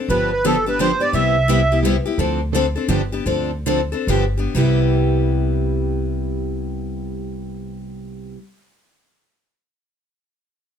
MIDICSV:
0, 0, Header, 1, 4, 480
1, 0, Start_track
1, 0, Key_signature, 0, "major"
1, 0, Tempo, 348635
1, 134, Time_signature, 3, 2, 24, 8
1, 3974, Tempo, 387097
1, 4934, Tempo, 427960
1, 5414, Tempo, 494234
1, 11920, End_track
2, 0, Start_track
2, 0, Title_t, "Accordion"
2, 0, Program_c, 0, 21
2, 137, Note_on_c, 0, 71, 78
2, 418, Note_off_c, 0, 71, 0
2, 439, Note_on_c, 0, 71, 78
2, 621, Note_off_c, 0, 71, 0
2, 633, Note_on_c, 0, 69, 78
2, 897, Note_off_c, 0, 69, 0
2, 944, Note_on_c, 0, 71, 68
2, 1095, Note_off_c, 0, 71, 0
2, 1109, Note_on_c, 0, 72, 89
2, 1393, Note_on_c, 0, 74, 88
2, 1402, Note_off_c, 0, 72, 0
2, 1575, Note_off_c, 0, 74, 0
2, 1575, Note_on_c, 0, 76, 87
2, 2470, Note_off_c, 0, 76, 0
2, 11920, End_track
3, 0, Start_track
3, 0, Title_t, "Steel-string acoustic guitar"
3, 0, Program_c, 1, 25
3, 129, Note_on_c, 1, 50, 54
3, 133, Note_on_c, 1, 53, 56
3, 138, Note_on_c, 1, 62, 66
3, 141, Note_on_c, 1, 59, 63
3, 141, Note_on_c, 1, 67, 72
3, 421, Note_off_c, 1, 50, 0
3, 423, Note_off_c, 1, 53, 0
3, 425, Note_off_c, 1, 62, 0
3, 427, Note_off_c, 1, 59, 0
3, 427, Note_off_c, 1, 67, 0
3, 613, Note_on_c, 1, 62, 87
3, 614, Note_on_c, 1, 50, 82
3, 615, Note_on_c, 1, 67, 90
3, 616, Note_on_c, 1, 53, 82
3, 618, Note_on_c, 1, 59, 93
3, 765, Note_off_c, 1, 50, 0
3, 765, Note_off_c, 1, 62, 0
3, 766, Note_off_c, 1, 67, 0
3, 767, Note_off_c, 1, 53, 0
3, 768, Note_off_c, 1, 59, 0
3, 914, Note_on_c, 1, 67, 48
3, 927, Note_on_c, 1, 62, 51
3, 942, Note_on_c, 1, 59, 45
3, 1084, Note_off_c, 1, 67, 0
3, 1087, Note_off_c, 1, 59, 0
3, 1091, Note_off_c, 1, 62, 0
3, 1091, Note_on_c, 1, 50, 80
3, 1103, Note_on_c, 1, 59, 78
3, 1105, Note_on_c, 1, 53, 75
3, 1108, Note_on_c, 1, 62, 80
3, 1108, Note_on_c, 1, 67, 83
3, 1243, Note_off_c, 1, 50, 0
3, 1249, Note_off_c, 1, 59, 0
3, 1250, Note_off_c, 1, 53, 0
3, 1251, Note_off_c, 1, 62, 0
3, 1251, Note_off_c, 1, 67, 0
3, 1381, Note_on_c, 1, 67, 49
3, 1391, Note_on_c, 1, 62, 49
3, 1408, Note_on_c, 1, 59, 46
3, 1550, Note_off_c, 1, 59, 0
3, 1557, Note_off_c, 1, 67, 0
3, 1560, Note_on_c, 1, 48, 57
3, 1562, Note_off_c, 1, 62, 0
3, 1563, Note_on_c, 1, 55, 61
3, 1567, Note_on_c, 1, 59, 57
3, 1574, Note_on_c, 1, 64, 61
3, 1586, Note_on_c, 1, 67, 67
3, 1852, Note_off_c, 1, 48, 0
3, 1854, Note_off_c, 1, 55, 0
3, 1856, Note_off_c, 1, 59, 0
3, 1859, Note_off_c, 1, 64, 0
3, 1865, Note_off_c, 1, 67, 0
3, 2039, Note_on_c, 1, 48, 83
3, 2052, Note_on_c, 1, 59, 80
3, 2056, Note_on_c, 1, 55, 82
3, 2059, Note_on_c, 1, 67, 101
3, 2061, Note_on_c, 1, 64, 93
3, 2194, Note_off_c, 1, 48, 0
3, 2201, Note_off_c, 1, 59, 0
3, 2202, Note_off_c, 1, 55, 0
3, 2204, Note_off_c, 1, 67, 0
3, 2205, Note_off_c, 1, 64, 0
3, 2365, Note_on_c, 1, 67, 48
3, 2366, Note_on_c, 1, 64, 46
3, 2380, Note_on_c, 1, 59, 46
3, 2526, Note_off_c, 1, 67, 0
3, 2527, Note_off_c, 1, 64, 0
3, 2528, Note_off_c, 1, 59, 0
3, 2544, Note_on_c, 1, 59, 81
3, 2547, Note_on_c, 1, 48, 83
3, 2550, Note_on_c, 1, 55, 87
3, 2560, Note_on_c, 1, 64, 74
3, 2560, Note_on_c, 1, 67, 79
3, 2685, Note_off_c, 1, 59, 0
3, 2687, Note_off_c, 1, 48, 0
3, 2688, Note_off_c, 1, 55, 0
3, 2693, Note_off_c, 1, 67, 0
3, 2694, Note_off_c, 1, 64, 0
3, 2830, Note_on_c, 1, 67, 49
3, 2845, Note_on_c, 1, 64, 43
3, 2851, Note_on_c, 1, 59, 38
3, 2997, Note_off_c, 1, 67, 0
3, 3005, Note_off_c, 1, 64, 0
3, 3008, Note_off_c, 1, 59, 0
3, 3013, Note_on_c, 1, 50, 63
3, 3015, Note_on_c, 1, 53, 60
3, 3021, Note_on_c, 1, 60, 68
3, 3025, Note_on_c, 1, 62, 57
3, 3031, Note_on_c, 1, 69, 68
3, 3297, Note_off_c, 1, 50, 0
3, 3297, Note_off_c, 1, 53, 0
3, 3300, Note_off_c, 1, 60, 0
3, 3303, Note_off_c, 1, 62, 0
3, 3306, Note_off_c, 1, 69, 0
3, 3504, Note_on_c, 1, 50, 80
3, 3510, Note_on_c, 1, 53, 81
3, 3516, Note_on_c, 1, 62, 89
3, 3518, Note_on_c, 1, 60, 90
3, 3524, Note_on_c, 1, 69, 95
3, 3649, Note_off_c, 1, 50, 0
3, 3652, Note_off_c, 1, 53, 0
3, 3654, Note_off_c, 1, 62, 0
3, 3655, Note_off_c, 1, 60, 0
3, 3659, Note_off_c, 1, 69, 0
3, 3794, Note_on_c, 1, 69, 48
3, 3810, Note_on_c, 1, 62, 44
3, 3819, Note_on_c, 1, 60, 43
3, 3970, Note_off_c, 1, 60, 0
3, 3971, Note_off_c, 1, 62, 0
3, 3971, Note_on_c, 1, 50, 76
3, 3972, Note_off_c, 1, 69, 0
3, 3972, Note_on_c, 1, 53, 70
3, 3975, Note_on_c, 1, 59, 88
3, 3980, Note_on_c, 1, 67, 85
3, 3986, Note_on_c, 1, 62, 88
3, 4120, Note_off_c, 1, 50, 0
3, 4120, Note_off_c, 1, 53, 0
3, 4122, Note_off_c, 1, 59, 0
3, 4124, Note_off_c, 1, 67, 0
3, 4127, Note_off_c, 1, 62, 0
3, 4268, Note_on_c, 1, 67, 52
3, 4277, Note_on_c, 1, 62, 46
3, 4285, Note_on_c, 1, 59, 42
3, 4433, Note_off_c, 1, 62, 0
3, 4434, Note_on_c, 1, 50, 62
3, 4436, Note_off_c, 1, 67, 0
3, 4437, Note_off_c, 1, 59, 0
3, 4442, Note_on_c, 1, 60, 60
3, 4445, Note_on_c, 1, 53, 65
3, 4447, Note_on_c, 1, 69, 65
3, 4448, Note_on_c, 1, 62, 63
3, 4732, Note_off_c, 1, 50, 0
3, 4736, Note_off_c, 1, 60, 0
3, 4737, Note_off_c, 1, 53, 0
3, 4739, Note_off_c, 1, 62, 0
3, 4739, Note_off_c, 1, 69, 0
3, 4934, Note_on_c, 1, 53, 84
3, 4940, Note_on_c, 1, 50, 83
3, 4946, Note_on_c, 1, 60, 93
3, 4951, Note_on_c, 1, 69, 80
3, 4952, Note_on_c, 1, 62, 77
3, 5084, Note_off_c, 1, 53, 0
3, 5087, Note_off_c, 1, 50, 0
3, 5090, Note_off_c, 1, 60, 0
3, 5092, Note_off_c, 1, 69, 0
3, 5093, Note_off_c, 1, 62, 0
3, 5225, Note_on_c, 1, 69, 51
3, 5237, Note_on_c, 1, 62, 47
3, 5248, Note_on_c, 1, 60, 41
3, 5402, Note_off_c, 1, 62, 0
3, 5404, Note_off_c, 1, 60, 0
3, 5406, Note_off_c, 1, 69, 0
3, 5407, Note_on_c, 1, 50, 81
3, 5409, Note_on_c, 1, 59, 73
3, 5412, Note_on_c, 1, 53, 81
3, 5416, Note_on_c, 1, 62, 90
3, 5422, Note_on_c, 1, 67, 85
3, 5553, Note_off_c, 1, 50, 0
3, 5554, Note_off_c, 1, 59, 0
3, 5555, Note_off_c, 1, 53, 0
3, 5557, Note_off_c, 1, 62, 0
3, 5560, Note_off_c, 1, 67, 0
3, 5692, Note_on_c, 1, 67, 48
3, 5704, Note_on_c, 1, 62, 47
3, 5711, Note_on_c, 1, 59, 40
3, 5857, Note_off_c, 1, 59, 0
3, 5859, Note_on_c, 1, 48, 63
3, 5859, Note_on_c, 1, 55, 76
3, 5864, Note_off_c, 1, 67, 0
3, 5869, Note_on_c, 1, 59, 74
3, 5870, Note_off_c, 1, 62, 0
3, 5880, Note_on_c, 1, 64, 75
3, 5887, Note_on_c, 1, 67, 76
3, 9564, Note_off_c, 1, 55, 0
3, 9565, Note_off_c, 1, 48, 0
3, 9574, Note_off_c, 1, 59, 0
3, 9585, Note_off_c, 1, 64, 0
3, 9592, Note_off_c, 1, 67, 0
3, 11920, End_track
4, 0, Start_track
4, 0, Title_t, "Upright bass"
4, 0, Program_c, 2, 32
4, 116, Note_on_c, 2, 31, 78
4, 1269, Note_off_c, 2, 31, 0
4, 1556, Note_on_c, 2, 36, 71
4, 2706, Note_off_c, 2, 36, 0
4, 3000, Note_on_c, 2, 38, 76
4, 3780, Note_off_c, 2, 38, 0
4, 3972, Note_on_c, 2, 31, 81
4, 4345, Note_off_c, 2, 31, 0
4, 4431, Note_on_c, 2, 38, 69
4, 5224, Note_off_c, 2, 38, 0
4, 5396, Note_on_c, 2, 31, 80
4, 5770, Note_off_c, 2, 31, 0
4, 5858, Note_on_c, 2, 36, 70
4, 9524, Note_off_c, 2, 36, 0
4, 11920, End_track
0, 0, End_of_file